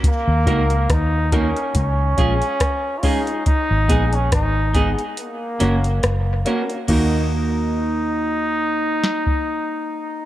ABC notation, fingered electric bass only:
X:1
M:4/4
L:1/16
Q:"Swing 16ths" 1/4=70
K:Ebm
V:1 name="Fingered electric bass" clef=bass
z E,, D,,2 E,,3 z D,,2 B,,, z4 z | z A,,, B,,,2 A,,,3 z3 G,,,2 G,,,2 z2 | E,,16 |]